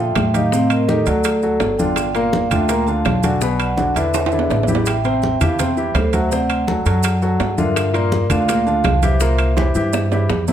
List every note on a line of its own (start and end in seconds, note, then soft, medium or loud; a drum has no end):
0.00 0.12 A#2 loud
0.00 0.28 F3 medium
0.00 0.28 F4 medium
0.00 0.28 A4 medium
0.00 0.33 E5 medium
0.00 0.35 G5 medium
0.15 1.01 A2 medium
0.15 high bongo medium
0.15 low bongo medium
0.15 high conga medium
0.15 high timbale medium
0.15 low timbale medium
0.15 claves medium
0.15 maracas soft
0.34 0.49 D#3 medium
0.34 0.49 D#4 medium
0.34 0.49 G4 medium
0.34 0.68 D#5 medium
0.34 0.68 F5 medium
0.34 high bongo soft
0.34 high conga medium
0.34 high timbale medium
0.34 maracas medium
0.52 0.82 C3 medium
0.52 0.82 C4 medium
0.52 0.82 C5 medium
0.52 high bongo medium
0.52 high conga soft
0.52 maracas medium
0.70 0.88 A#4 medium
0.70 0.86 D#5 medium
0.70 high conga soft
0.70 high timbale medium
0.70 claves medium
0.70 maracas soft
0.87 1.04 D#3 medium
0.87 1.04 D#4 medium
0.87 1.04 G4 medium
0.87 1.06 A4 medium
0.87 1.05 D#5 medium
0.87 high bongo soft
0.87 high conga medium
0.87 low timbale medium
0.87 maracas soft
1.06 1.57 D2 loud
1.06 1.36 F#3 medium
1.06 1.37 F#4 medium
1.06 1.75 A4 medium
1.06 1.37 A4 medium
1.06 1.75 D5 loud
1.06 high bongo soft
1.06 high conga soft
1.06 high timbale medium
1.06 maracas medium
1.24 high bongo medium
1.24 high conga soft
1.24 high timbale loud
1.24 claves medium
1.24 maracas medium
1.43 1.73 F#3 medium
1.43 1.73 F#4 medium
1.43 1.73 A4 medium
1.43 high bongo soft
1.43 high conga soft
1.43 maracas soft
1.60 2.45 G1 medium
1.60 high bongo medium
1.60 low bongo medium
1.60 high conga soft
1.60 high timbale medium
1.60 low timbale medium
1.60 maracas soft
1.78 2.09 D3 medium
1.78 2.09 D4 medium
1.78 2.09 F4 medium
1.78 2.13 D5 medium
1.78 2.12 G5 medium
1.78 high bongo soft
1.78 high conga medium
1.78 maracas medium
1.96 high bongo medium
1.96 high conga soft
1.96 high timbale medium
1.96 claves medium
1.96 maracas medium
2.14 2.45 A#2 medium
2.14 2.45 A#3 medium
2.14 2.45 A#4 medium
2.14 2.49 D5 medium
2.14 2.48 F5 medium
2.14 high bongo soft
2.14 high conga soft
2.14 high timbale medium
2.14 maracas soft
2.33 high bongo medium
2.33 high conga loud
2.33 low timbale medium
2.33 maracas soft
2.50 3.02 D2 loud
2.50 2.67 D3 medium
2.50 2.66 D4 medium
2.50 2.67 F4 medium
2.50 2.69 G5 loud
2.50 high conga soft
2.50 low conga medium
2.50 high timbale medium
2.50 claves medium
2.50 maracas medium
2.68 2.84 A#2 medium
2.68 2.84 A#3 medium
2.68 2.84 A#4 medium
2.68 2.87 G5 medium
2.68 2.86 A#5 medium
2.68 high bongo medium
2.68 high conga soft
2.68 high timbale medium
2.68 maracas medium
2.87 3.17 D3 medium
2.87 3.17 D4 medium
2.87 3.17 F4 medium
2.87 3.22 F5 medium
2.87 3.25 A5 loud
2.87 high bongo soft
2.87 high conga soft
2.87 maracas soft
3.05 3.90 B1 medium
3.05 high bongo medium
3.05 low bongo medium
3.05 high conga medium
3.05 high timbale medium
3.05 low timbale medium
3.05 claves medium
3.05 maracas soft
3.22 3.38 D3 medium
3.22 3.39 D4 medium
3.22 3.39 F#4 medium
3.22 3.58 D5 medium
3.22 3.57 G#5 loud
3.22 high bongo soft
3.22 high conga medium
3.22 high timbale medium
3.22 maracas medium
3.41 3.71 B2 medium
3.41 3.72 B3 medium
3.41 3.72 B4 medium
3.41 high bongo medium
3.41 high conga soft
3.41 maracas medium
3.60 3.69 D5 medium
3.60 3.68 F#5 medium
3.60 high conga soft
3.60 high timbale medium
3.60 claves medium
3.60 maracas soft
3.76 3.93 D3 medium
3.76 3.93 D4 medium
3.76 3.93 F#4 medium
3.76 3.87 D5 medium
3.76 3.85 F#5 medium
3.76 high bongo medium
3.76 high conga loud
3.76 low timbale medium
3.76 maracas soft
3.95 4.47 E2 medium
3.95 4.26 D3 medium
3.95 4.26 D4 medium
3.95 4.26 E4 medium
3.95 4.65 B4 medium
3.95 4.64 E5 loud
3.95 high bongo soft
3.95 high conga soft
3.95 high timbale medium
3.95 maracas medium
4.14 high bongo medium
4.14 high conga soft
4.14 high timbale medium
4.14 claves medium
4.14 maracas medium
4.26 high timbale medium
4.32 4.62 D3 medium
4.32 4.62 D4 medium
4.32 4.62 E4 medium
4.32 high bongo soft
4.32 high conga soft
4.32 maracas soft
4.39 low timbale medium
4.50 5.35 A1 medium
4.50 high bongo medium
4.50 low bongo medium
4.50 high conga soft
4.50 low timbale loud
4.50 maracas soft
4.63 low timbale medium
4.68 4.98 E3 medium
4.68 4.98 E4 medium
4.68 4.98 G4 medium
4.68 high bongo soft
4.68 high conga medium
4.68 maracas medium
4.75 low timbale medium
4.86 5.04 E5 medium
4.86 5.02 G5 loud
4.86 high bongo medium
4.86 high timbale loud
4.86 claves medium
4.86 maracas medium
5.04 5.34 C3 medium
5.04 5.34 C4 medium
5.04 5.35 C5 medium
5.04 5.39 E5 medium
5.04 5.38 G5 loud
5.04 high bongo soft
5.04 high conga soft
5.04 high timbale medium
5.04 maracas soft
5.22 high bongo medium
5.22 high conga medium
5.22 low timbale medium
5.22 maracas soft
5.40 5.91 E2 medium
5.40 5.56 E3 medium
5.40 5.56 E4 medium
5.40 5.56 G4 medium
5.40 5.50 F5 medium
5.40 5.48 A5 medium
5.40 high conga soft
5.40 low conga medium
5.40 high timbale medium
5.40 claves medium
5.40 maracas medium
5.58 5.74 C3 medium
5.58 5.74 C4 medium
5.58 5.74 C5 medium
5.58 5.94 E5 medium
5.58 5.92 G5 medium
5.58 high bongo medium
5.58 high conga soft
5.58 low conga medium
5.58 high timbale medium
5.58 maracas medium
5.77 6.07 E3 medium
5.77 6.07 E4 medium
5.77 6.07 G4 medium
5.77 high bongo soft
5.77 high conga soft
5.77 maracas soft
5.94 6.80 D2 loud
5.94 6.13 A4 medium
5.94 6.12 C5 medium
5.94 high bongo medium
5.94 low bongo medium
5.94 high conga medium
5.94 high timbale loud
5.94 low timbale medium
5.94 claves medium
5.94 maracas soft
6.12 6.28 F#3 medium
6.12 6.29 F#4 medium
6.12 6.29 A4 medium
6.12 6.21 E5 medium
6.12 high bongo soft
6.12 high conga medium
6.12 high timbale medium
6.12 maracas medium
6.30 6.61 C3 medium
6.30 6.61 C4 medium
6.30 6.61 C5 medium
6.30 7.54 D5 medium
6.30 7.61 F#5 loud
6.30 high bongo medium
6.30 high conga soft
6.30 maracas medium
6.50 high conga soft
6.50 high timbale medium
6.50 claves medium
6.50 maracas soft
6.67 6.83 F#3 medium
6.67 6.83 F#4 medium
6.67 6.83 A4 medium
6.67 high bongo medium
6.67 high conga medium
6.67 low timbale medium
6.67 maracas soft
6.86 7.36 F#2 loud
6.86 7.16 F#3 medium
6.86 7.16 F#4 medium
6.86 7.16 A4 medium
6.86 high bongo soft
6.86 high conga soft
6.86 high timbale medium
6.86 maracas medium
7.03 high bongo medium
7.03 high conga soft
7.03 high timbale loud
7.03 claves medium
7.03 maracas medium
7.22 7.52 F#3 medium
7.22 7.52 F#4 medium
7.22 7.52 A4 medium
7.22 high bongo soft
7.22 high conga soft
7.22 maracas soft
7.40 8.25 G2 loud
7.40 high bongo medium
7.40 low bongo medium
7.40 high conga soft
7.40 high timbale medium
7.40 low timbale medium
7.40 maracas soft
7.58 7.88 D3 medium
7.58 7.88 D4 medium
7.58 7.88 F4 medium
7.58 7.93 A#4 medium
7.58 7.92 E5 medium
7.58 high bongo soft
7.58 high conga medium
7.58 maracas medium
7.76 high bongo medium
7.76 high timbale medium
7.76 claves medium
7.76 maracas medium
7.93 8.24 A#2 medium
7.93 8.24 A#3 medium
7.93 8.24 A#4 medium
7.93 8.29 A#4 medium
7.93 8.28 D5 medium
7.93 high bongo soft
7.93 high conga soft
7.93 high timbale medium
7.93 maracas soft
8.12 high bongo medium
8.12 high conga loud
8.12 low timbale medium
8.12 maracas soft
8.30 8.81 D2 loud
8.30 8.46 D3 medium
8.30 8.46 D4 medium
8.30 8.46 F4 medium
8.30 8.65 D5 medium
8.30 8.67 F5 loud
8.30 high conga soft
8.30 low conga medium
8.30 high timbale medium
8.30 claves medium
8.30 maracas medium
8.48 8.63 A#2 medium
8.48 8.63 A#3 medium
8.48 8.64 A#4 medium
8.48 high bongo medium
8.48 high conga soft
8.48 high timbale medium
8.48 maracas medium
8.66 8.96 D3 medium
8.66 8.96 D4 medium
8.66 8.97 F4 medium
8.66 9.01 F5 medium
8.66 9.01 A5 loud
8.66 high bongo soft
8.66 high conga soft
8.66 maracas soft
8.84 9.69 C2 loud
8.84 high bongo medium
8.84 low bongo medium
8.84 high conga medium
8.84 high timbale medium
8.84 low timbale medium
8.84 claves medium
8.84 maracas soft
9.03 9.18 E3 medium
9.03 9.18 E4 medium
9.03 9.18 G4 medium
9.03 10.27 C5 medium
9.03 10.26 E5 medium
9.03 high bongo soft
9.03 high conga medium
9.03 high timbale medium
9.03 maracas medium
9.20 9.51 A#2 medium
9.20 9.51 A#3 medium
9.20 9.51 A#4 medium
9.20 high bongo medium
9.20 high conga soft
9.20 maracas medium
9.38 high conga soft
9.38 high timbale medium
9.38 claves medium
9.38 maracas soft
9.57 9.72 E3 medium
9.57 9.72 E4 medium
9.57 9.73 G4 medium
9.57 high bongo medium
9.57 high conga loud
9.57 high timbale medium
9.57 maracas soft
9.75 10.26 G2 loud
9.75 10.05 E3 medium
9.75 10.05 E4 medium
9.75 10.06 G4 medium
9.75 high bongo soft
9.75 high conga soft
9.75 maracas medium
9.93 high bongo medium
9.93 high conga soft
9.93 low timbale loud
9.93 claves medium
9.93 maracas loud
10.12 10.42 E3 medium
10.12 10.42 E4 medium
10.12 10.42 G4 medium
10.12 high bongo soft
10.12 high conga soft
10.12 low timbale medium
10.12 maracas soft
10.29 10.53 F2 loud
10.29 high bongo medium
10.29 low bongo medium
10.29 high conga soft
10.29 low timbale medium
10.29 maracas soft
10.48 10.53 C3 medium
10.48 10.53 C4 medium
10.48 10.53 E4 medium
10.48 high bongo soft
10.48 high conga medium
10.48 low timbale medium
10.48 maracas medium